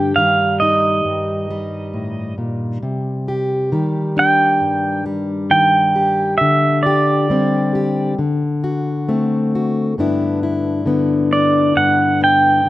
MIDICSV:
0, 0, Header, 1, 3, 480
1, 0, Start_track
1, 0, Key_signature, 1, "major"
1, 0, Tempo, 892857
1, 1520, Time_signature, 4, 2, 24, 8
1, 6823, End_track
2, 0, Start_track
2, 0, Title_t, "Pedal steel guitar"
2, 0, Program_c, 0, 26
2, 0, Note_on_c, 0, 79, 77
2, 85, Note_on_c, 0, 77, 68
2, 94, Note_off_c, 0, 79, 0
2, 322, Note_on_c, 0, 75, 52
2, 329, Note_off_c, 0, 77, 0
2, 1260, Note_off_c, 0, 75, 0
2, 2253, Note_on_c, 0, 79, 71
2, 2706, Note_off_c, 0, 79, 0
2, 2963, Note_on_c, 0, 79, 72
2, 3426, Note_off_c, 0, 79, 0
2, 3428, Note_on_c, 0, 76, 67
2, 3670, Note_on_c, 0, 74, 51
2, 3682, Note_off_c, 0, 76, 0
2, 4374, Note_off_c, 0, 74, 0
2, 6089, Note_on_c, 0, 74, 54
2, 6327, Note_on_c, 0, 78, 69
2, 6331, Note_off_c, 0, 74, 0
2, 6570, Note_off_c, 0, 78, 0
2, 6579, Note_on_c, 0, 79, 70
2, 6823, Note_off_c, 0, 79, 0
2, 6823, End_track
3, 0, Start_track
3, 0, Title_t, "Steel-string acoustic guitar"
3, 0, Program_c, 1, 25
3, 0, Note_on_c, 1, 43, 55
3, 0, Note_on_c, 1, 50, 43
3, 0, Note_on_c, 1, 62, 41
3, 0, Note_on_c, 1, 67, 47
3, 82, Note_off_c, 1, 50, 0
3, 93, Note_on_c, 1, 51, 46
3, 94, Note_on_c, 1, 55, 42
3, 110, Note_off_c, 1, 62, 0
3, 333, Note_on_c, 1, 63, 43
3, 557, Note_off_c, 1, 43, 0
3, 563, Note_on_c, 1, 43, 44
3, 807, Note_off_c, 1, 55, 0
3, 809, Note_on_c, 1, 55, 39
3, 1041, Note_on_c, 1, 45, 44
3, 1277, Note_off_c, 1, 45, 0
3, 1279, Note_on_c, 1, 46, 44
3, 1494, Note_off_c, 1, 43, 0
3, 1499, Note_off_c, 1, 51, 0
3, 1499, Note_off_c, 1, 63, 0
3, 1517, Note_off_c, 1, 46, 0
3, 1519, Note_on_c, 1, 48, 53
3, 1732, Note_off_c, 1, 67, 0
3, 1765, Note_on_c, 1, 67, 46
3, 1998, Note_off_c, 1, 55, 0
3, 2000, Note_off_c, 1, 48, 0
3, 2001, Note_on_c, 1, 51, 45
3, 2005, Note_on_c, 1, 55, 43
3, 2240, Note_on_c, 1, 62, 46
3, 2476, Note_on_c, 1, 43, 43
3, 2713, Note_off_c, 1, 55, 0
3, 2719, Note_on_c, 1, 55, 41
3, 2952, Note_off_c, 1, 51, 0
3, 2958, Note_on_c, 1, 51, 43
3, 3196, Note_off_c, 1, 67, 0
3, 3202, Note_on_c, 1, 67, 46
3, 3410, Note_off_c, 1, 43, 0
3, 3411, Note_off_c, 1, 51, 0
3, 3413, Note_off_c, 1, 67, 0
3, 3447, Note_on_c, 1, 50, 53
3, 3690, Note_on_c, 1, 67, 47
3, 3917, Note_off_c, 1, 55, 0
3, 3924, Note_on_c, 1, 55, 42
3, 3928, Note_off_c, 1, 62, 0
3, 3930, Note_on_c, 1, 60, 41
3, 4162, Note_off_c, 1, 67, 0
3, 4168, Note_on_c, 1, 67, 47
3, 4376, Note_off_c, 1, 67, 0
3, 4377, Note_off_c, 1, 60, 0
3, 4394, Note_off_c, 1, 50, 0
3, 4401, Note_on_c, 1, 50, 46
3, 4403, Note_off_c, 1, 55, 0
3, 4644, Note_on_c, 1, 66, 48
3, 4885, Note_on_c, 1, 57, 42
3, 4887, Note_on_c, 1, 60, 42
3, 5122, Note_off_c, 1, 66, 0
3, 5135, Note_on_c, 1, 66, 48
3, 5334, Note_off_c, 1, 57, 0
3, 5335, Note_off_c, 1, 60, 0
3, 5339, Note_off_c, 1, 66, 0
3, 5361, Note_off_c, 1, 50, 0
3, 5365, Note_on_c, 1, 43, 48
3, 5371, Note_on_c, 1, 50, 40
3, 5374, Note_on_c, 1, 59, 41
3, 5376, Note_on_c, 1, 62, 44
3, 5378, Note_on_c, 1, 64, 46
3, 5606, Note_off_c, 1, 64, 0
3, 5608, Note_on_c, 1, 64, 43
3, 5830, Note_off_c, 1, 50, 0
3, 5837, Note_on_c, 1, 50, 42
3, 5843, Note_off_c, 1, 59, 0
3, 5845, Note_on_c, 1, 59, 41
3, 6087, Note_off_c, 1, 62, 0
3, 6089, Note_on_c, 1, 62, 41
3, 6316, Note_off_c, 1, 43, 0
3, 6322, Note_on_c, 1, 43, 45
3, 6562, Note_off_c, 1, 59, 0
3, 6564, Note_on_c, 1, 59, 39
3, 6797, Note_off_c, 1, 50, 0
3, 6803, Note_on_c, 1, 50, 47
3, 6823, Note_off_c, 1, 43, 0
3, 6823, Note_off_c, 1, 50, 0
3, 6823, Note_off_c, 1, 59, 0
3, 6823, Note_off_c, 1, 62, 0
3, 6823, Note_off_c, 1, 64, 0
3, 6823, End_track
0, 0, End_of_file